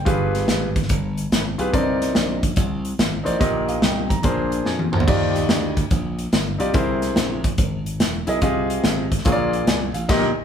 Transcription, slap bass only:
0.06 G1
0.48 G#1
0.90 G1
1.32 G#1
1.59 B1
1.73 C2
2.15 A#1
2.57 C2
2.99 G#1
3.26 A1
3.41 A#1
3.82 C2
4.24 A#1
4.66 F2
4.94 D2
5.08 D#2
5.49 D2
5.91 A#1
6.32 G1
6.60 B1
6.74 C2
7.16 A#1
7.58 G#1
8.00 E1
8.27 B1
8.42 C2
8.84 G#1
9.25 A#1
9.67 C2
9.95 A1
10.09 A#1

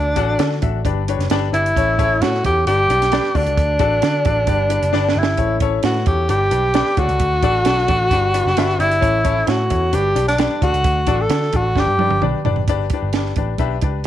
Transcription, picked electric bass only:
Already playing: D2
0.16 A1
0.39 D3
0.63 A1
0.85 G1
1.19 F#1
1.30 G1
1.53 G1
1.76 A1
2.21 A2
2.44 E2
2.66 G1
2.89 B1
3.35 D2
3.46 C#2
3.57 D2
3.80 A1
4.03 D3
4.26 A1
4.47 G1
4.82 F#1
4.94 G1
5.15 G1
5.38 A1
5.84 A2
6.07 E2
6.29 G1
6.51 B1
6.98 D2
7.08 C#2
7.20 D2
7.42 A1
7.66 B1
7.89 A1
8.11 G1
8.45 F#1
8.57 G1
8.79 G1
9.03 A1
9.48 A2
9.71 E2
9.93 G1
10.16 B1
10.62 D2
10.73 C#2
10.85 D2
11.07 A1
11.29 D3
11.53 A1
11.76 G1
11.87 G2
11.98 G2
12.11 G1
12.23 B1
12.45 F#1
12.68 G1
13.02 G1
13.37 A1
13.58 B1
13.82 C#2

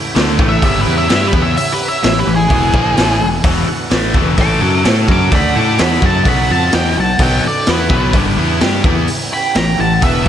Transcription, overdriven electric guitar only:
0.15 D3 A3 D4
0.39 A2 E3 A3
0.62 G2 D3 G3
0.85 E3 B3 E4
1.09 G3 D4 G4
1.32 E3 B3 E4
2.03 A2 E3
2.27 A2 E3
2.50 E2 B2 E3
2.73 A#2 F3 A#3
2.97 A2 E3 A3
3.20 E2 B2
3.44 E2 B2 E3
3.67 muted overdriven electric guitar stroke
3.90 A2 E3 A3
4.14 E2 B2 E3
4.37 A2 E3 A3
4.61 F#3 C#4 F#4
4.84 A3 E4 A4
5.07 F#3 C#4 F#4
5.32 D3 A3 D4
5.55 A3 E4 A4
5.79 E3 B3 E4
6.03 F#3 C#4 F#4
6.26 B2 F#3 B3
6.50 F3 C4 F4
6.73 E3 B3 E4
6.96 B2 F#3
7.20 B2 F#3 B3
7.45 muted overdriven electric guitar stroke
7.68 E3 B3 E4
7.90 B2 F#3 B3
8.13 G2 D3 G3
8.37 E3 B3 E4
8.61 G3 D4 G4
8.83 E3 B3 E4
9.55 A2 E3
9.78 A2 E3
10.02 E2 B2 E3

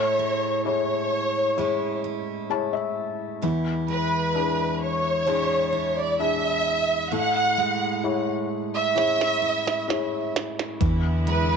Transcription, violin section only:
Already playing: C#5
0.66 C#5
3.89 B4
4.82 C#5
5.97 D5
6.20 E5
7.14 F#5
8.74 E5
11.29 B4

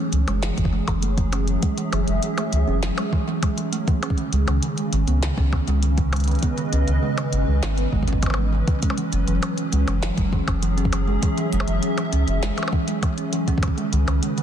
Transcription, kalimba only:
0.13 E3
0.28 G#3
0.43 E3
0.58 E3
0.73 G#3
0.88 E3
1.03 A3
1.18 E3
1.33 C#4
1.48 E3
1.63 G#3
1.78 E3
1.93 E3
2.08 G#3
2.23 E3
2.38 A3
2.53 E3
2.68 C#4
2.83 E3
2.98 G#3
3.13 E3
3.28 E3
3.43 G#3
3.58 E3
3.73 A3
3.88 E3
4.03 C#4
4.18 D#3
4.33 G#3
4.48 D#3
4.63 D#3
4.78 G#3
4.93 D#3
5.08 B3
5.23 D#3
5.38 C#4
5.53 D#3
5.68 G#3
5.83 D#3
5.98 D#3
6.13 G#3
6.28 D#3
6.43 B3
6.58 D#3
6.73 C#4
6.88 D#3
7.03 G#3
7.18 D#3
7.33 D#3
7.48 G#3
7.63 D#3
7.78 B3
7.93 G#3
8.08 C#4
8.23 E3
8.38 G#3
8.53 E3
8.68 E3
8.83 G#3
8.98 E3
9.13 C#4
9.28 E3
9.43 C#4
9.58 E3
9.73 G#3
9.88 E3
10.03 E3
10.18 G#3
10.33 E3
10.48 C#4
10.63 E3
10.78 C#4
10.93 E3
11.08 G#3
11.23 E3
11.38 E3
11.53 G#3
11.68 E3
11.83 C#4
11.98 E3
12.13 C#4
12.28 E3
12.43 G#3
12.58 E3
12.73 E3
12.88 G#3
13.03 E3
13.18 C#4
13.33 E3
13.48 C#4
13.63 D#3
13.78 G#3
13.93 D#3
14.08 D#3
14.23 G#3
14.38 D#3

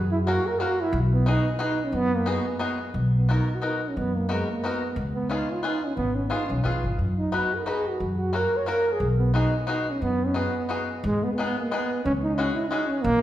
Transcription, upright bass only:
Already playing: F#2
0.93 B1
1.92 F#2
2.94 B1
3.97 F#2
4.96 C#2
5.97 G#1
6.50 B1
6.65 A#1
6.84 G#1
6.99 F#2
8.00 F#2
9.00 B1
10.02 F#2
11.04 G#2
12.05 C#2
13.04 A#1

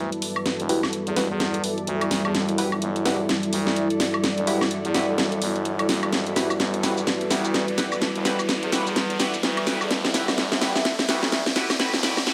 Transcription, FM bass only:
Already playing: D2
0.60 E1
1.07 E2
1.16 E1
1.30 E2
1.87 D2
2.25 E2
2.35 E1
2.82 G1
3.53 D2
4.38 E1
4.85 E2
4.94 E1
5.08 E1
5.42 G1
5.89 F#1
6.13 E1
6.60 G1
7.31 D2
8.15 E1
8.63 E2
8.72 E1
8.86 E2
9.43 D2
9.81 E2
9.90 E1
10.38 G1
11.08 D2
11.93 E1

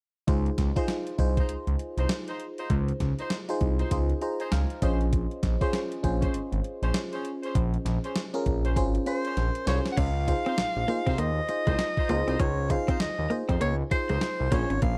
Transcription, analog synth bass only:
0.28 C#2
0.58 C#2
1.19 C2
1.49 C#2
1.67 C#2
1.97 C2
2.70 C#2
3.00 C#2
3.61 C2
3.91 C#2
4.52 C#2
4.82 A#1
5.43 A#1
6.04 A#1
6.34 G#1
6.52 G#1
6.82 A#1
7.55 A#1
7.85 A#1
8.46 A#1
8.76 G#1
9.37 A#1
9.67 C2
9.97 C#2
10.58 A#1
10.76 A#1
11.07 C2
11.18 D#2
11.67 C2
12.09 C#2
12.28 C2
12.40 C#2
13.00 D#2
13.19 D#2
13.49 F2
13.61 C#2
14.10 C#2
14.40 C2
14.52 A#1
14.70 G#1
14.82 A#1

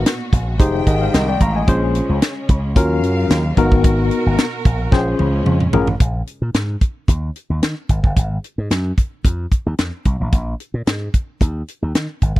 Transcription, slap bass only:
0.33 A#1
0.60 F1
0.87 G#1
1.14 C2
1.41 A1
1.68 A#1
2.09 C#2
2.49 C#2
2.76 D#2
3.03 F#2
3.30 D#2
3.57 G#1
4.26 G#1
4.65 A#1
4.92 A#1
5.20 C#2
5.46 F2
5.74 A1
6.00 A#1
6.42 A#2
6.54 G#2
7.08 D#2
7.50 D#2
7.62 D#3
7.89 G#1
8.04 G1
8.16 G#1
8.58 G#2
8.70 F#2
9.25 F2
9.66 D#2
9.79 F2
10.06 C2
10.20 A1
10.33 A#1
10.74 A#2
10.87 G#2
11.41 D#2
11.82 D#2
11.95 D#3
12.22 G#1
12.36 G1

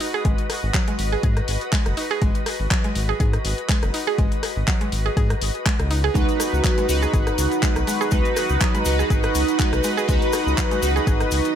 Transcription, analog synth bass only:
0.25 G#1
0.63 G#1
0.99 G#1
1.23 G#2
1.48 G#1
1.86 F#1
2.22 G#1
2.60 G#1
2.96 G#1
3.20 G#2
3.45 G#1
3.83 F#1
4.18 G#1
4.56 G#1
4.92 G#1
5.17 G#2
5.42 G#1
5.79 C#2
6.15 C#2
6.53 C#2
6.89 C#2
7.14 G#1
7.38 C#2
7.76 B1
8.12 C#2
8.50 C#2
8.86 C#2
9.10 G#1
9.35 C#2
9.73 B1
10.09 C#2
10.47 C#2
10.82 C#2
11.07 G#1
11.32 C#2

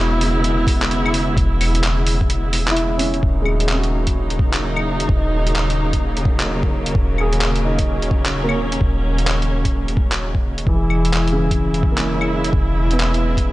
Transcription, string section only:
Already playing: C#3 G#3 B3 E4
3.23 C#3 F#3 A#3 D#4
6.95 C#4
10.67 C#3 G#3 E4

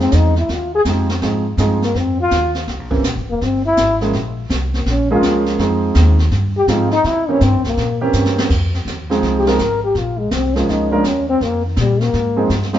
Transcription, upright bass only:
Already playing: F2
0.12 E2
0.49 D#2
0.85 F2
1.22 G#2
1.57 G2
1.95 F2
2.31 D#2
2.68 C2
2.79 A#1
2.92 G1
3.03 A#1
3.16 G1
3.29 E1
3.41 G1
3.77 G#1
4.13 A#1
4.50 C2
4.85 A#1
5.22 C#2
5.58 F2
5.96 D#2
6.31 G2
6.67 G#2
7.04 C3
7.41 G2
7.53 E2
7.65 C2
7.77 A#2
8.13 G2
8.50 F2
8.85 D#2
9.22 C2
9.59 G#1
9.95 A#1
10.31 C2
10.67 C#2
11.04 D#2
11.41 F2
11.77 A#2
12.14 G#2
12.50 G2

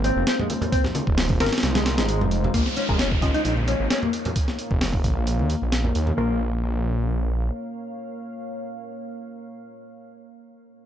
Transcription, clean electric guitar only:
0.04 C4
0.27 C4
0.39 G#3
0.72 C4
1.75 G#3
1.98 G#3
2.09 G#3
2.54 A#3
2.77 C#4
2.89 G#3
2.99 C#4
3.34 D#4
3.45 D#4
3.68 C#4
3.90 C#4
4.03 A#3
6.18 A#3

